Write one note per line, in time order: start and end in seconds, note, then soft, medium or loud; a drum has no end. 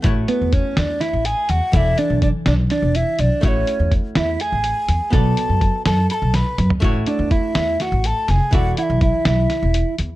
0.02 0.24 A1 medium
0.02 1.69 A3 medium
0.02 1.70 E4 medium
0.02 1.71 F#4 medium
0.02 1.71 C#5 medium
0.02 kick loud
0.02 closed hi-hat medium
0.28 0.53 B3 medium
0.28 0.55 B4 medium
0.28 closed hi-hat medium
0.41 0.60 E2 medium
0.53 0.77 C#4 medium
0.53 0.79 C#5 medium
0.53 kick medium
0.53 closed hi-hat medium
0.77 0.96 E2 medium
0.77 1.02 D4 medium
0.77 1.02 D5 medium
0.77 snare loud
0.77 closed hi-hat medium
1.01 1.25 E4 medium
1.01 1.27 E5 medium
1.01 snare soft
1.01 closed hi-hat medium
1.13 1.32 A1 medium
1.25 1.50 G#4 medium
1.25 1.52 G#5 loud
1.25 closed hi-hat medium
1.49 1.59 E2 medium
1.49 1.74 F#4 medium
1.49 1.74 F#5 medium
1.49 closed hi-hat medium
1.72 1.93 E1 medium
1.72 3.39 E3 medium
1.72 3.40 E4 medium
1.72 1.98 E4 medium
1.72 3.40 A4 medium
1.72 3.41 D5 medium
1.72 1.78 F#5 medium
1.72 kick loud
1.72 closed hi-hat medium
1.77 2.00 E5 medium
1.98 2.22 D4 medium
1.98 2.22 D5 medium
1.98 closed hi-hat medium
2.10 2.29 B1 medium
2.22 2.30 D4 medium
2.22 2.28 D5 medium
2.22 kick medium
2.22 closed hi-hat medium
2.46 2.65 B1 medium
2.46 2.54 D4 medium
2.46 2.53 D5 medium
2.46 snare medium
2.46 closed hi-hat medium
2.70 2.96 D4 medium
2.70 2.97 D5 medium
2.70 snare soft
2.70 closed hi-hat medium
2.82 3.02 E1 medium
2.95 3.20 E4 medium
2.95 3.22 E5 medium
2.95 closed hi-hat medium
3.19 3.29 B1 medium
3.19 3.44 D4 medium
3.19 3.46 D5 medium
3.19 closed hi-hat medium
3.41 3.62 A1 loud
3.41 5.08 A3 medium
3.41 3.92 C#4 medium
3.41 5.09 E4 medium
3.41 5.10 F#4 medium
3.41 3.49 E5 medium
3.41 kick loud
3.41 closed hi-hat medium
3.45 5.11 C#5 medium
3.45 3.92 C#5 medium
3.67 closed hi-hat medium
3.79 3.99 E2 medium
3.92 kick medium
3.92 closed hi-hat medium
4.15 4.35 E2 medium
4.15 4.41 E4 medium
4.15 4.42 E5 medium
4.15 snare medium
4.15 closed hi-hat medium
4.40 5.13 G#4 medium
4.40 5.13 G#5 medium
4.40 closed hi-hat medium
4.52 4.71 A1 medium
4.64 closed hi-hat medium
4.88 4.98 E2 medium
4.88 closed hi-hat medium
5.10 5.32 B1 medium
5.10 6.78 B3 medium
5.10 6.79 F#4 medium
5.10 6.80 A4 medium
5.10 5.82 A4 medium
5.10 5.82 A5 loud
5.10 kick loud
5.10 closed hi-hat medium
5.15 6.80 D5 medium
5.37 closed hi-hat medium
5.49 5.68 F#2 medium
5.61 kick medium
5.61 closed hi-hat medium
5.86 6.05 F#2 medium
5.86 6.09 A4 medium
5.86 6.09 A5 medium
5.86 snare medium
5.86 closed hi-hat medium
6.10 6.35 A4 medium
6.10 6.37 A5 medium
6.10 6.15 B5 medium
6.10 closed hi-hat medium
6.22 6.41 B1 medium
6.34 6.71 B4 medium
6.34 6.71 B5 medium
6.34 snare medium
6.34 closed hi-hat medium
6.58 6.68 F#2 medium
6.58 closed hi-hat medium
6.58 mid tom medium
6.70 floor tom medium
6.80 7.02 A1 medium
6.80 8.48 A3 medium
6.80 8.49 E4 medium
6.80 8.49 F#4 medium
6.80 kick loud
6.80 closed hi-hat medium
6.84 8.50 C#5 medium
7.06 7.30 D4 medium
7.06 7.30 D5 medium
7.06 closed hi-hat medium
7.19 7.38 E2 medium
7.31 7.77 E4 medium
7.31 7.83 E5 medium
7.31 kick medium
7.31 closed hi-hat medium
7.55 7.74 E2 medium
7.55 snare medium
7.55 closed hi-hat medium
7.80 8.06 F#4 medium
7.80 8.08 F#5 medium
7.80 snare soft
7.80 closed hi-hat medium
7.92 8.11 A1 medium
8.04 8.30 A4 medium
8.04 8.32 A5 medium
8.04 closed hi-hat medium
8.28 8.38 F1 medium
8.28 8.54 G#4 medium
8.28 8.54 G#5 medium
8.28 snare soft
8.28 closed hi-hat medium
8.51 8.72 E1 medium
8.51 10.16 E3 medium
8.51 10.16 E4 medium
8.51 8.76 F#4 medium
8.51 10.16 A4 medium
8.51 10.16 D5 medium
8.51 kick loud
8.51 closed hi-hat medium
8.55 8.77 F#5 loud
8.77 9.00 E4 medium
8.77 8.84 F#5 medium
8.77 closed hi-hat medium
8.83 9.00 E5 medium
8.90 9.08 B1 medium
9.01 9.24 E4 medium
9.01 9.25 E5 medium
9.01 kick medium
9.01 closed hi-hat medium
9.25 9.45 B1 medium
9.25 9.95 E4 medium
9.25 9.95 E5 medium
9.25 snare loud
9.25 closed hi-hat medium
9.50 snare soft
9.50 closed hi-hat medium
9.62 9.81 E1 medium
9.74 closed hi-hat medium
9.98 10.08 E2 medium
9.98 closed hi-hat medium